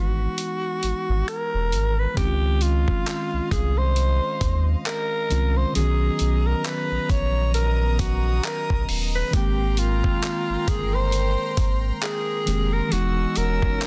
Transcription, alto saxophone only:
0.00 1.24 F#4 medium
1.28 2.00 A#4 loud
1.99 2.17 B4 medium
2.17 2.64 G4 loud
2.62 3.51 F4 loud
3.52 3.79 G#4 medium
3.78 4.67 C5 loud
4.86 5.59 A#4 loud
5.57 5.75 C5 loud
5.76 6.48 G#4 loud
6.46 6.67 A#4 loud
6.65 7.12 B4 loud
7.10 7.54 C#5 loud
7.55 8.01 A#4 loud
8.00 8.46 F#4 medium
8.44 8.85 A#4 loud
9.15 9.36 B4 loud
9.34 9.80 G4 loud
9.79 10.70 F4 loud
10.68 10.96 G#4 loud
10.94 11.84 C5 loud
12.03 12.75 G#4 loud
12.73 12.94 A#4 medium
12.92 13.39 F#4 medium
13.37 13.87 A#4 loud

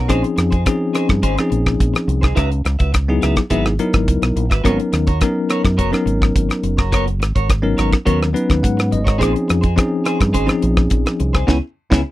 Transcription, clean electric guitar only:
0.09 0.23 C#4 medium
0.09 0.23 D#4 medium
0.09 0.23 G#4 loud
0.09 0.22 C5 loud
0.24 muted clean electric guitar stroke soft
0.36 muted clean electric guitar stroke soft
0.51 0.64 D#4 soft
0.51 0.65 G#4 soft
0.51 0.65 C5 medium
0.65 muted clean electric guitar stroke soft
0.93 1.08 C#4 medium
0.93 1.08 D#4 medium
0.93 1.08 G#4 medium
0.93 1.08 C5 medium
1.09 muted clean electric guitar stroke soft
1.23 1.37 C#4 medium
1.23 1.36 D#4 medium
1.23 1.36 G#4 medium
1.23 1.35 C5 medium
1.36 muted clean electric guitar stroke soft
1.50 muted clean electric guitar stroke soft
1.94 muted clean electric guitar stroke soft
2.08 muted clean electric guitar stroke soft
2.21 2.34 D#4 soft
2.21 2.35 G#4 medium
2.21 2.36 C5 medium
2.35 2.50 D#4 medium
2.35 2.49 F#4 medium
2.35 2.49 B4 medium
2.35 2.49 E5 medium
2.50 muted clean electric guitar stroke soft
2.65 muted clean electric guitar stroke soft
2.79 2.91 F#4 soft
2.79 2.92 B4 medium
2.79 2.92 E5 medium
2.92 muted clean electric guitar stroke soft
3.21 3.36 D#4 medium
3.21 3.36 F#4 medium
3.21 3.35 B4 medium
3.21 3.35 E5 medium
3.37 muted clean electric guitar stroke soft
3.50 3.65 D#4 medium
3.50 3.65 F#4 medium
3.50 3.65 B4 medium
3.50 3.65 E5 medium
3.66 muted clean electric guitar stroke soft
3.80 muted clean electric guitar stroke soft
4.22 muted clean electric guitar stroke soft
4.36 muted clean electric guitar stroke soft
4.50 4.63 F#4 soft
4.50 4.64 B4 medium
4.50 4.64 E5 soft
4.64 4.78 B3 medium
4.64 4.78 F#4 medium
4.64 4.78 A#4 medium
4.64 4.77 C#5 medium
4.79 muted clean electric guitar stroke soft
4.92 muted clean electric guitar stroke soft
5.07 5.19 F#4 soft
5.07 5.19 A#4 medium
5.07 5.19 C#5 medium
5.20 muted clean electric guitar stroke soft
5.49 5.64 B3 medium
5.49 5.63 F#4 medium
5.49 5.62 A#4 medium
5.49 5.62 C#5 medium
5.63 muted clean electric guitar stroke soft
5.77 5.92 B3 medium
5.77 5.91 F#4 medium
5.77 5.91 A#4 medium
5.77 5.91 C#5 medium
5.92 muted clean electric guitar stroke soft
6.06 muted clean electric guitar stroke soft
6.49 muted clean electric guitar stroke soft
6.64 muted clean electric guitar stroke soft
6.77 6.91 F#4 soft
6.77 6.91 A#4 medium
6.77 6.92 C#5 medium
6.92 7.07 B3 medium
6.92 7.06 F#4 medium
6.92 7.05 A#4 medium
6.92 7.05 C#5 loud
7.06 muted clean electric guitar stroke soft
7.20 muted clean electric guitar stroke soft
7.35 7.48 F#4 soft
7.35 7.48 A#4 soft
7.35 7.49 C#5 medium
7.49 muted clean electric guitar stroke soft
7.77 7.92 B3 medium
7.77 7.91 F#4 medium
7.77 7.90 A#4 medium
7.77 7.90 C#5 medium
7.91 muted clean electric guitar stroke soft
8.05 8.20 B3 medium
8.05 8.20 F#4 medium
8.05 8.20 A#4 medium
8.05 8.19 C#5 medium
8.21 muted clean electric guitar stroke soft
8.34 muted clean electric guitar stroke soft
8.77 muted clean electric guitar stroke soft
8.91 muted clean electric guitar stroke soft
9.04 9.18 F#4 soft
9.04 9.18 A#4 medium
9.04 9.19 C#5 medium
9.18 9.34 C#4 medium
9.18 9.33 D#4 medium
9.18 9.32 G#4 medium
9.18 9.32 C5 medium
9.33 muted clean electric guitar stroke soft
9.48 muted clean electric guitar stroke soft
9.61 9.75 D#4 soft
9.61 9.75 G#4 medium
9.61 9.75 C5 medium
9.76 muted clean electric guitar stroke soft
10.04 10.20 C#4 medium
10.04 10.19 D#4 medium
10.04 10.19 G#4 medium
10.04 10.18 C5 medium
10.20 muted clean electric guitar stroke soft
10.33 10.48 C#4 medium
10.33 10.47 D#4 medium
10.33 10.47 G#4 loud
10.33 10.47 C5 medium
10.48 muted clean electric guitar stroke soft
10.62 muted clean electric guitar stroke soft
11.06 muted clean electric guitar stroke soft
11.20 muted clean electric guitar stroke soft
11.33 11.47 D#4 medium
11.33 11.46 G#4 medium
11.33 11.48 C5 medium
11.47 11.57 C#4 medium
11.47 11.57 E4 medium
11.47 11.57 G#4 medium
11.91 12.01 C#4 medium
11.91 12.00 E4 medium
11.91 12.00 G#4 medium

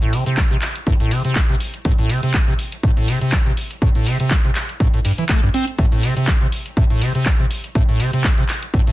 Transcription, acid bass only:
0.02 0.15 A2 medium
0.13 0.24 C3 medium
0.26 0.39 C3 medium
0.38 0.42 A3 loud
0.51 0.57 C3 medium
0.87 0.94 A2 loud
1.00 1.13 A2 medium
1.11 1.22 C3 medium
1.25 1.38 C3 medium
1.36 1.40 A3 loud
1.49 1.56 C3 medium
1.85 1.93 A2 loud
1.99 2.11 A2 medium
2.10 2.21 C3 medium
2.23 2.36 C3 medium
2.34 2.39 A3 loud
2.48 2.54 C3 medium
2.84 2.91 A2 loud
2.97 3.10 A2 medium
3.08 3.19 C3 medium
3.21 3.34 C3 medium
3.33 3.37 A3 loud
3.46 3.52 C3 medium
3.82 3.89 A2 loud
3.95 4.08 A2 medium
4.07 4.18 C3 medium
4.20 4.33 C3 medium
4.31 4.35 A3 medium
4.44 4.51 C3 medium
4.80 4.88 A2 loud
4.94 5.00 A2 medium
5.05 5.12 G2 medium
5.18 5.24 E3 medium
5.30 5.41 A3 medium
5.43 5.49 G2 loud
5.54 5.65 C4 loud
5.79 5.86 A2 loud
5.92 6.05 A2 medium
6.03 6.14 C3 medium
6.17 6.29 C3 medium
6.28 6.32 A3 loud
6.41 6.47 C3 medium
6.77 6.84 A2 loud
6.90 7.03 A2 medium
7.01 7.13 C3 medium
7.15 7.28 C3 medium
7.26 7.31 A3 loud
7.40 7.46 C3 medium
7.75 7.83 A2 loud
7.89 8.01 A2 medium
8.00 8.11 C3 medium
8.13 8.26 C3 medium
8.24 8.29 A3 loud
8.38 8.44 C3 medium
8.74 8.81 A2 loud
8.87 8.92 A2 medium

